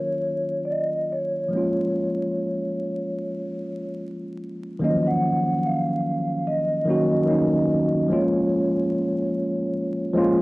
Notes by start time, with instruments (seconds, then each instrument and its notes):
Already playing: tine electric piano D#3 F#3 A#3 C#4 F4, vibraphone C#5
0.65 vibraphone D5
0.71 vibraphone D#5
1.12 vibraphone C#5
1.48 tine electric piano F3 G#3
1.53 tine electric piano A#3 C#4
1.57 tine electric piano F4
4.79 tine electric piano D#3 F#3 A#3 C#4
4.84 tine electric piano D#4, vibraphone D#5
4.90 tine electric piano F3
5.07 vibraphone F#5
5.59 vibraphone F#5
5.66 vibraphone F5
6.47 vibraphone D#5
6.86 tine electric piano D#3 F#3 A#3 C#4
6.90 tine electric piano F#4
7.26 tine electric piano D#3 F#3 A#3 C#4
7.31 tine electric piano D#4
8.08 tine electric piano F3 G#3 A#3 C#4
8.12 tine electric piano F4, vibraphone C#5
10.14 tine electric piano F3 G#3 A#3 C#4
10.18 tine electric piano F4